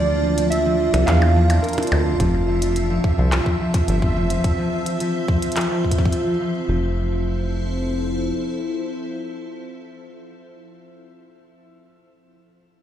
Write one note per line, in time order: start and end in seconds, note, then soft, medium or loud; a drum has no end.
0.00 0.90 D2 medium
0.00 0.22 F3 loud
0.00 2.20 A#3 medium
0.00 3.72 D4 medium
0.00 6.69 F4 medium
0.00 0.47 D5 loud
0.00 3.12 D5 medium
0.00 6.69 A5 medium
0.10 0.79 F4 medium
0.24 0.36 F3 medium
0.38 0.65 F3 loud
0.38 closed hi-hat medium
0.50 1.09 E5 loud
0.50 closed hi-hat medium
0.66 0.93 F3 loud
0.80 2.06 F4 medium
0.94 1.05 C2 loud
0.94 1.07 F3 medium
0.94 closed hi-hat medium
0.94 percussion blips loud
1.06 1.60 E2 loud
1.06 1.35 F3 loud
1.06 1.65 F5 loud
1.06 clap loud
1.06 closed hi-hat medium
1.22 percussion blips soft
1.36 2.19 F3 loud
1.50 1.77 C4 medium
1.50 closed hi-hat medium
1.50 percussion blips soft
1.62 2.02 A#4 medium
1.62 closed hi-hat soft
1.69 closed hi-hat soft
1.73 closed hi-hat soft
1.78 4.78 C4 medium
1.78 closed hi-hat soft
1.78 percussion blips medium
1.83 closed hi-hat soft
1.87 closed hi-hat soft
1.92 2.15 D2 loud
1.92 2.25 F2 medium
1.92 percussion blips medium
2.06 2.62 F4 medium
2.20 3.00 F1 loud
2.20 2.47 F3 loud
2.20 6.70 E5 medium
2.20 kick loud
2.20 closed hi-hat medium
2.48 2.75 F3 loud
2.48 6.69 C4 medium
2.62 3.32 F4 medium
2.62 6.69 E5 medium
2.62 closed hi-hat medium
2.76 2.89 F3 medium
2.76 closed hi-hat medium
2.90 3.17 F3 loud
3.04 kick loud
3.18 3.41 C2 loud
3.18 3.45 F3 loud
3.32 4.02 F4 medium
3.32 clap loud
3.32 closed hi-hat medium
3.46 3.59 F3 medium
3.46 6.69 C5 medium
3.46 kick medium
3.60 3.87 F3 loud
3.74 kick loud
3.74 closed hi-hat medium
3.88 4.18 G1 medium
3.88 4.15 F3 loud
3.88 closed hi-hat medium
4.02 4.72 F4 medium
4.02 kick medium
4.16 4.39 F1 medium
4.16 4.29 F3 medium
4.30 4.57 F3 loud
4.30 closed hi-hat medium
4.44 kick loud
4.44 closed hi-hat medium
4.58 4.85 F3 loud
4.72 5.42 F4 medium
4.86 4.99 F3 medium
4.86 closed hi-hat medium
5.00 5.27 F3 loud
5.00 closed hi-hat medium
5.28 5.55 F3 loud
5.28 kick loud
5.42 6.12 F4 medium
5.42 closed hi-hat medium
5.52 closed hi-hat medium
5.56 5.69 F3 medium
5.56 clap loud
5.56 closed hi-hat medium
5.61 closed hi-hat soft
5.70 5.97 F3 loud
5.84 kick soft
5.91 kick medium
5.91 closed hi-hat medium
5.98 6.25 F3 loud
5.98 kick medium
6.06 kick medium
6.12 8.65 F4 medium
6.12 closed hi-hat medium
6.27 6.39 F3 medium
6.41 6.67 F3 medium
6.69 8.33 F1 medium
6.69 10.51 F3 medium
6.69 9.69 F3 medium
6.77 9.69 C4 medium
6.85 9.69 E4 medium
6.94 9.69 A4 medium
7.02 9.69 C5 medium